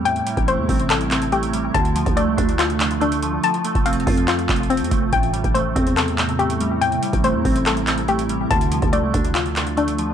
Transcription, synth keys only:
X:1
M:4/4
L:1/8
Q:1/4=142
K:Am
V:1 name="Synth keys"
[A,,G,A,C] G, A, C2 C A, G, | D, F, A, D2 D A, F, | F, A, C F2 F C A, | A,, G, A, C2 C A, G, |
A,, G, A, C2 C A, G, | D, F, A, D2 D A, F, |]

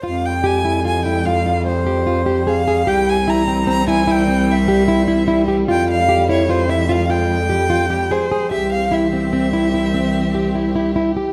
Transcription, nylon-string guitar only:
X:1
M:7/4
L:1/8
Q:1/4=148
K:Fm
V:1 name="Nylon-string guitar"
F2 G =E F E F F2 G F G A A | G2 =E C C E E C2 G E E E G | F2 G =E F E F F2 G F G A A | G2 =E C C E E C2 G E E E G |]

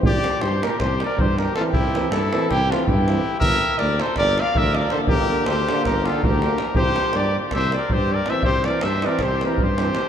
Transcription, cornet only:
X:1
M:9/8
L:1/8
Q:3/8=107
K:Cmix
V:1 name="Cornet"
d2 c B c d c B A | G2 A2 G F G3 | e2 d c d f e d c | B2 c2 B A B3 |
c2 d z e d c d e | c d e d c B c3 |]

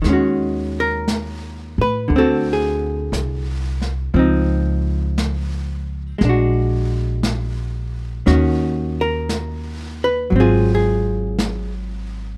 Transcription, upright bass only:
X:1
M:4/4
L:1/8
Q:"Swing" 1/4=58
K:Ebdor
V:1 name="Upright bass" clef=bass
E,,3 =A,, =D,,2 C,,2 | D,,4 B,,,4 | E,,4 A,,,4 |]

